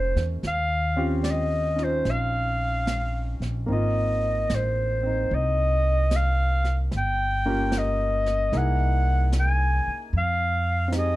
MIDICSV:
0, 0, Header, 1, 6, 480
1, 0, Start_track
1, 0, Tempo, 811908
1, 251, Time_signature, 4, 2, 24, 8
1, 3133, Tempo, 803213
1, 6636, End_track
2, 0, Start_track
2, 0, Title_t, "Clarinet"
2, 0, Program_c, 0, 71
2, 0, Note_on_c, 0, 72, 70
2, 161, Note_off_c, 0, 72, 0
2, 281, Note_on_c, 0, 77, 79
2, 692, Note_off_c, 0, 77, 0
2, 733, Note_on_c, 0, 74, 53
2, 775, Note_on_c, 0, 75, 69
2, 784, Note_off_c, 0, 74, 0
2, 1087, Note_on_c, 0, 72, 63
2, 1096, Note_off_c, 0, 75, 0
2, 1245, Note_on_c, 0, 77, 67
2, 1254, Note_off_c, 0, 72, 0
2, 2029, Note_off_c, 0, 77, 0
2, 2202, Note_on_c, 0, 75, 67
2, 2690, Note_on_c, 0, 72, 62
2, 2699, Note_off_c, 0, 75, 0
2, 3161, Note_on_c, 0, 75, 78
2, 3170, Note_off_c, 0, 72, 0
2, 3647, Note_on_c, 0, 77, 73
2, 3656, Note_off_c, 0, 75, 0
2, 4030, Note_off_c, 0, 77, 0
2, 4135, Note_on_c, 0, 79, 81
2, 4615, Note_on_c, 0, 75, 73
2, 4624, Note_off_c, 0, 79, 0
2, 5088, Note_on_c, 0, 78, 89
2, 5097, Note_off_c, 0, 75, 0
2, 5552, Note_off_c, 0, 78, 0
2, 5583, Note_on_c, 0, 80, 77
2, 5933, Note_off_c, 0, 80, 0
2, 6048, Note_on_c, 0, 77, 83
2, 6488, Note_off_c, 0, 77, 0
2, 6530, Note_on_c, 0, 75, 71
2, 6636, Note_off_c, 0, 75, 0
2, 6636, End_track
3, 0, Start_track
3, 0, Title_t, "Grand piano"
3, 0, Program_c, 1, 0
3, 0, Control_c, 1, 64, 127
3, 0, Note_on_c, 1, 58, 47
3, 0, Note_on_c, 1, 61, 36
3, 0, Note_on_c, 1, 63, 31
3, 0, Note_on_c, 1, 65, 40
3, 0, Note_on_c, 1, 68, 56
3, 249, Note_off_c, 1, 58, 0
3, 254, Note_off_c, 1, 61, 0
3, 258, Note_off_c, 1, 63, 0
3, 259, Control_c, 1, 64, 0
3, 262, Note_off_c, 1, 65, 0
3, 263, Note_off_c, 1, 68, 0
3, 379, Control_c, 1, 64, 127
3, 570, Note_on_c, 1, 60, 49
3, 571, Note_on_c, 1, 61, 48
3, 575, Note_on_c, 1, 65, 47
3, 578, Note_on_c, 1, 67, 58
3, 1032, Note_off_c, 1, 61, 0
3, 1041, Note_on_c, 1, 61, 34
3, 1053, Note_off_c, 1, 65, 0
3, 1053, Note_on_c, 1, 63, 29
3, 1062, Note_on_c, 1, 65, 37
3, 2166, Note_on_c, 1, 58, 41
3, 2169, Note_off_c, 1, 60, 0
3, 2173, Note_off_c, 1, 61, 0
3, 2175, Note_off_c, 1, 63, 0
3, 2178, Note_on_c, 1, 60, 37
3, 2181, Note_off_c, 1, 67, 0
3, 2182, Control_c, 1, 64, 0
3, 2183, Note_off_c, 1, 65, 0
3, 2184, Note_on_c, 1, 63, 35
3, 2199, Note_on_c, 1, 65, 45
3, 2282, Control_c, 1, 64, 127
3, 2965, Note_off_c, 1, 60, 0
3, 2974, Note_on_c, 1, 60, 33
3, 2983, Note_off_c, 1, 63, 0
3, 2992, Note_on_c, 1, 63, 36
3, 4092, Note_off_c, 1, 58, 0
3, 4097, Note_off_c, 1, 60, 0
3, 4105, Control_c, 1, 64, 0
3, 4106, Note_off_c, 1, 63, 0
3, 4109, Note_off_c, 1, 65, 0
3, 4210, Control_c, 1, 64, 127
3, 4422, Note_on_c, 1, 58, 45
3, 4424, Note_on_c, 1, 61, 41
3, 4425, Note_on_c, 1, 65, 39
3, 4433, Note_on_c, 1, 67, 47
3, 5052, Note_off_c, 1, 58, 0
3, 5061, Note_on_c, 1, 58, 44
3, 5061, Note_on_c, 1, 63, 41
3, 5063, Note_off_c, 1, 61, 0
3, 5063, Note_off_c, 1, 65, 0
3, 5063, Note_on_c, 1, 64, 40
3, 5065, Control_c, 1, 64, 0
3, 5067, Note_off_c, 1, 67, 0
3, 5070, Note_on_c, 1, 68, 47
3, 5183, Control_c, 1, 64, 127
3, 6017, Note_off_c, 1, 58, 0
3, 6018, Note_off_c, 1, 63, 0
3, 6018, Note_off_c, 1, 64, 0
3, 6022, Note_off_c, 1, 68, 0
3, 6024, Control_c, 1, 64, 0
3, 6119, Control_c, 1, 64, 127
3, 6468, Note_on_c, 1, 60, 41
3, 6489, Note_on_c, 1, 63, 38
3, 6514, Note_on_c, 1, 67, 38
3, 6533, Note_on_c, 1, 68, 43
3, 6636, Note_off_c, 1, 60, 0
3, 6636, Note_off_c, 1, 63, 0
3, 6636, Note_off_c, 1, 67, 0
3, 6636, Note_off_c, 1, 68, 0
3, 6636, End_track
4, 0, Start_track
4, 0, Title_t, "Upright bass"
4, 0, Program_c, 2, 32
4, 0, Note_on_c, 2, 29, 73
4, 68, Note_off_c, 2, 29, 0
4, 91, Note_on_c, 2, 40, 54
4, 241, Note_off_c, 2, 40, 0
4, 254, Note_on_c, 2, 39, 69
4, 1187, Note_off_c, 2, 39, 0
4, 1211, Note_on_c, 2, 34, 64
4, 1988, Note_off_c, 2, 34, 0
4, 2012, Note_on_c, 2, 34, 50
4, 2164, Note_off_c, 2, 34, 0
4, 2176, Note_on_c, 2, 32, 62
4, 2632, Note_off_c, 2, 32, 0
4, 2659, Note_on_c, 2, 33, 61
4, 3112, Note_off_c, 2, 33, 0
4, 3140, Note_on_c, 2, 36, 72
4, 4076, Note_off_c, 2, 36, 0
4, 4106, Note_on_c, 2, 31, 68
4, 5038, Note_off_c, 2, 31, 0
4, 5058, Note_on_c, 2, 36, 69
4, 5828, Note_off_c, 2, 36, 0
4, 6019, Note_on_c, 2, 41, 72
4, 6636, Note_off_c, 2, 41, 0
4, 6636, End_track
5, 0, Start_track
5, 0, Title_t, "Muted upright bass strokes"
5, 5865, Note_on_c, 9, 29, 34
5, 5925, Note_off_c, 9, 29, 0
5, 6636, End_track
6, 0, Start_track
6, 0, Title_t, "Drums"
6, 98, Note_on_c, 9, 38, 22
6, 157, Note_off_c, 9, 38, 0
6, 256, Note_on_c, 9, 25, 32
6, 256, Note_on_c, 9, 38, 23
6, 315, Note_off_c, 9, 38, 0
6, 733, Note_on_c, 9, 38, 38
6, 733, Note_on_c, 9, 44, 47
6, 793, Note_off_c, 9, 38, 0
6, 793, Note_off_c, 9, 44, 0
6, 1055, Note_on_c, 9, 38, 23
6, 1114, Note_off_c, 9, 38, 0
6, 1213, Note_off_c, 9, 25, 0
6, 1213, Note_on_c, 9, 25, 30
6, 1213, Note_on_c, 9, 38, 26
6, 1272, Note_off_c, 9, 38, 0
6, 1697, Note_on_c, 9, 38, 36
6, 1697, Note_on_c, 9, 44, 44
6, 1757, Note_off_c, 9, 38, 0
6, 1757, Note_off_c, 9, 44, 0
6, 2020, Note_on_c, 9, 38, 20
6, 2079, Note_off_c, 9, 38, 0
6, 2178, Note_off_c, 9, 25, 0
6, 2178, Note_on_c, 9, 25, 29
6, 2658, Note_on_c, 9, 38, 36
6, 2658, Note_on_c, 9, 44, 43
6, 2717, Note_off_c, 9, 38, 0
6, 2717, Note_off_c, 9, 44, 0
6, 3136, Note_off_c, 9, 25, 0
6, 3136, Note_on_c, 9, 25, 33
6, 3618, Note_on_c, 9, 38, 36
6, 3618, Note_on_c, 9, 44, 48
6, 3677, Note_off_c, 9, 38, 0
6, 3677, Note_off_c, 9, 44, 0
6, 3937, Note_on_c, 9, 38, 21
6, 3997, Note_off_c, 9, 38, 0
6, 4099, Note_off_c, 9, 25, 0
6, 4099, Note_on_c, 9, 25, 33
6, 4099, Note_on_c, 9, 38, 23
6, 4159, Note_off_c, 9, 38, 0
6, 4579, Note_on_c, 9, 38, 38
6, 4579, Note_on_c, 9, 44, 47
6, 4638, Note_off_c, 9, 38, 0
6, 4638, Note_off_c, 9, 44, 0
6, 4903, Note_on_c, 9, 38, 24
6, 4963, Note_off_c, 9, 38, 0
6, 5062, Note_off_c, 9, 25, 0
6, 5062, Note_on_c, 9, 25, 30
6, 5062, Note_on_c, 9, 38, 26
6, 5122, Note_off_c, 9, 38, 0
6, 5538, Note_on_c, 9, 38, 37
6, 5538, Note_on_c, 9, 44, 54
6, 5598, Note_off_c, 9, 38, 0
6, 5598, Note_off_c, 9, 44, 0
6, 6014, Note_off_c, 9, 25, 0
6, 6014, Note_on_c, 9, 25, 25
6, 6494, Note_on_c, 9, 38, 38
6, 6494, Note_on_c, 9, 44, 40
6, 6554, Note_off_c, 9, 38, 0
6, 6554, Note_off_c, 9, 44, 0
6, 6636, Note_off_c, 9, 25, 0
6, 6636, End_track
0, 0, End_of_file